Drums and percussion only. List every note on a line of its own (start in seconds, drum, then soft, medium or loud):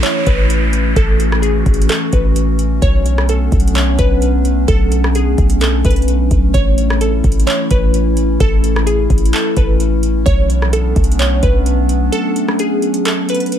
0.03 clap loud
0.03 closed hi-hat medium
0.27 kick medium
0.27 closed hi-hat medium
0.50 closed hi-hat medium
0.73 closed hi-hat medium
0.96 kick loud
0.96 closed hi-hat medium
1.20 closed hi-hat medium
1.32 cross-stick medium
1.43 closed hi-hat medium
1.66 kick loud
1.66 closed hi-hat soft
1.74 closed hi-hat medium
1.82 closed hi-hat medium
1.89 clap loud
1.89 closed hi-hat medium
2.13 kick medium
2.13 closed hi-hat medium
2.36 closed hi-hat medium
2.59 closed hi-hat medium
2.82 kick loud
2.82 closed hi-hat medium
3.06 closed hi-hat medium
3.18 cross-stick loud
3.29 closed hi-hat medium
3.52 kick loud
3.52 closed hi-hat soft
3.60 closed hi-hat medium
3.68 closed hi-hat medium
3.75 clap loud
3.75 closed hi-hat medium
3.99 kick loud
3.99 closed hi-hat medium
4.22 closed hi-hat medium
4.45 closed hi-hat medium
4.68 kick loud
4.68 closed hi-hat medium
4.92 closed hi-hat medium
5.04 cross-stick loud
5.15 closed hi-hat medium
5.38 kick loud
5.38 closed hi-hat medium
5.50 closed hi-hat medium
5.61 clap loud
5.61 closed hi-hat medium
5.85 kick medium
5.85 closed hi-hat medium
5.91 closed hi-hat medium
5.96 closed hi-hat medium
6.02 closed hi-hat soft
6.08 closed hi-hat medium
6.31 kick medium
6.31 closed hi-hat medium
6.54 kick loud
6.54 closed hi-hat medium
6.78 closed hi-hat medium
6.90 cross-stick loud
7.01 closed hi-hat medium
7.24 kick loud
7.24 closed hi-hat soft
7.32 closed hi-hat medium
7.40 closed hi-hat medium
7.47 clap loud
7.47 closed hi-hat medium
7.71 kick medium
7.71 closed hi-hat medium
7.94 closed hi-hat medium
8.17 closed hi-hat medium
8.40 kick loud
8.40 closed hi-hat medium
8.64 closed hi-hat medium
8.76 cross-stick loud
8.87 closed hi-hat medium
9.10 kick loud
9.10 closed hi-hat soft
9.18 closed hi-hat medium
9.26 closed hi-hat medium
9.33 clap loud
9.33 closed hi-hat medium
9.57 kick medium
9.57 closed hi-hat medium
9.80 closed hi-hat medium
10.03 closed hi-hat medium
10.26 kick loud
10.26 closed hi-hat medium
10.50 closed hi-hat medium
10.62 cross-stick medium
10.73 closed hi-hat medium
10.96 kick loud
10.96 closed hi-hat soft
11.04 closed hi-hat medium
11.12 closed hi-hat medium
11.19 clap loud
11.19 closed hi-hat medium
11.43 kick loud
11.43 closed hi-hat medium
11.66 closed hi-hat medium
11.89 closed hi-hat medium
12.13 closed hi-hat medium
12.36 closed hi-hat medium
12.48 cross-stick medium
12.59 closed hi-hat medium
12.82 closed hi-hat soft
12.94 closed hi-hat medium
13.05 clap loud
13.05 closed hi-hat medium
13.29 closed hi-hat medium
13.35 closed hi-hat medium
13.40 closed hi-hat medium
13.46 closed hi-hat soft
13.52 closed hi-hat medium